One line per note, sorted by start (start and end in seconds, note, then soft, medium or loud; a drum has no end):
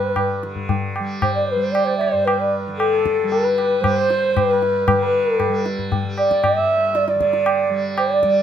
0.00 2.12 G2 medium
0.00 0.42 D3 medium
0.00 0.99 G3 medium
0.00 0.38 B4 medium
0.00 0.53 B4 medium
0.16 tabla na medium
0.16 tabla ge medium
0.43 2.67 D3 medium
0.43 tabla te medium
0.56 tabla ge soft
0.69 tabla tin medium
0.69 tabla ge medium
0.96 1.56 G3 medium
0.96 tabla na medium
1.22 1.34 C5 medium
1.22 tabla na medium
1.22 tabla ge medium
1.35 1.88 C5 medium
1.35 1.48 D5 medium
1.46 1.61 B4 medium
1.56 3.23 G3 medium
1.60 1.73 C5 medium
1.72 1.86 D5 medium
1.72 tabla na medium
1.85 1.97 C5 medium
1.85 2.03 D5 medium
1.98 2.42 C5 medium
1.98 2.13 E5 medium
1.98 tabla na medium
2.12 4.36 G2 medium
2.12 2.27 D5 medium
2.25 2.41 B4 medium
2.25 tabla na medium
2.39 2.67 B4 medium
2.39 2.53 D5 medium
2.67 4.92 D3 medium
2.78 3.31 A4 medium
2.78 tabla na medium
2.93 3.46 A4 medium
3.06 tabla ke medium
3.23 3.81 G3 medium
3.29 3.82 B4 medium
3.29 tabla tin medium
3.44 3.98 B4 medium
3.58 tabla na medium
3.81 5.49 G3 medium
3.81 4.34 C5 loud
3.81 tabla na medium
3.81 tabla ge medium
3.97 4.52 C5 medium
4.10 tabla te medium
4.34 6.58 G2 medium
4.34 4.45 C5 loud
4.34 tabla na medium
4.34 tabla ge medium
4.45 4.86 B4 loud
4.50 5.01 B4 medium
4.62 tabla te medium
4.86 5.36 B4 medium
4.86 tabla na loud
4.86 tabla ge medium
4.93 7.14 D3 medium
5.02 5.75 B4 medium
5.36 5.61 A4 medium
5.36 tabla na medium
5.36 tabla ge medium
5.49 6.04 G3 medium
5.66 tabla te medium
5.79 tabla ge medium
5.92 tabla tin medium
5.92 tabla ge medium
6.04 7.70 G3 medium
6.18 6.46 D5 medium
6.18 tabla na medium
6.31 6.58 D5 medium
6.31 tabla ke medium
6.44 6.97 E5 loud
6.44 tabla na medium
6.44 tabla ge medium
6.56 8.43 G2 medium
6.56 7.11 E5 medium
6.95 7.08 D5 medium
6.95 tabla te medium
7.08 7.81 D5 medium
7.08 7.21 D5 medium
7.08 tabla te medium
7.15 8.43 D3 medium
7.21 7.94 D5 medium
7.21 tabla ke medium
7.33 tabla te medium
7.46 tabla na medium
7.70 8.24 G3 medium
7.98 8.43 D5 loud
7.98 tabla na medium
8.11 8.43 D5 medium
8.23 8.43 G3 medium
8.23 tabla ke medium